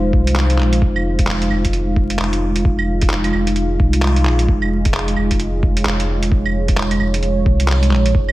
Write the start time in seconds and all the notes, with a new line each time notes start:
Already playing: F1 G#3 D#4 F4 C5 F5
0.13 C2, kick
0.27 closed hi-hat
0.36 clap
0.50 closed hi-hat
0.59 A#1, clap
0.73 closed hi-hat
0.82 F1, kick
0.96 claves
1.19 kick, closed hi-hat
1.27 F1, clap
1.42 closed hi-hat
1.50 F1, claves
1.65 kick, closed hi-hat
1.73 closed hi-hat
1.96 kick
2.10 closed hi-hat
2.19 F1, clap
2.33 closed hi-hat
2.56 closed hi-hat
2.65 F1, kick
2.79 claves
3.02 kick, closed hi-hat
3.10 F1, clap
3.24 closed hi-hat, claves
3.33 F1, claves
3.47 closed hi-hat
3.56 closed hi-hat
3.80 C2, kick
3.93 closed hi-hat
4.02 clap
4.16 closed hi-hat
4.25 A#1, clap
4.39 closed hi-hat
4.48 F1 G#3, kick
4.62 claves
4.71 D#4
4.81 F4, closed hi-hat
4.86 kick
4.94 F1, clap
5.08 closed hi-hat
5.16 F1, claves
5.30 C#5, kick, closed hi-hat
5.40 closed hi-hat
5.63 kick
5.77 closed hi-hat
5.85 F1, clap
6.00 closed hi-hat
6.23 closed hi-hat
6.32 F1, kick
6.46 claves
6.68 kick, closed hi-hat
6.77 F1, clap
6.91 closed hi-hat, claves
7.00 F1, claves
7.14 closed hi-hat
7.23 closed hi-hat
7.46 C2, kick
7.60 closed hi-hat
7.68 clap
7.83 closed hi-hat
7.91 A#1, clap
8.06 closed hi-hat
8.15 F1, kick
8.29 claves